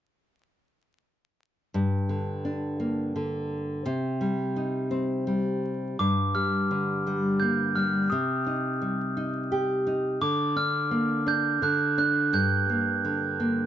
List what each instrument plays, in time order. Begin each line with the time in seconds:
1.74 nylon-string guitar G2
2.09 nylon-string guitar D3
2.45 nylon-string guitar D4
2.80 nylon-string guitar A#3
3.16 nylon-string guitar D3
3.86 nylon-string guitar C3
4.21 nylon-string guitar G3
4.56 nylon-string guitar D#4
4.91 nylon-string guitar C4
5.27 nylon-string guitar G3
5.99 nylon-string guitar G2, glockenspiel D6
6.35 nylon-string guitar G3, glockenspiel F6
6.71 nylon-string guitar D3
7.07 nylon-string guitar G3
7.40 nylon-string guitar A#3, glockenspiel G6
7.76 nylon-string guitar G3, glockenspiel F6
8.10 nylon-string guitar C3, glockenspiel D#6
8.46 nylon-string guitar D#4
8.81 nylon-string guitar G3
9.17 nylon-string guitar D#4
9.52 nylon-string guitar G4
9.87 nylon-string guitar D#4
10.21 nylon-string guitar D3, glockenspiel D6
10.56 nylon-string guitar D4, glockenspiel F6
10.91 nylon-string guitar A#3
11.26 nylon-string guitar D4, glockenspiel G6
11.62 nylon-string guitar D3, glockenspiel F#6
11.98 nylon-string guitar D4, glockenspiel F#6
12.33 nylon-string guitar G2, glockenspiel G6
12.70 nylon-string guitar A#3
13.05 nylon-string guitar D3
13.40 nylon-string guitar A#3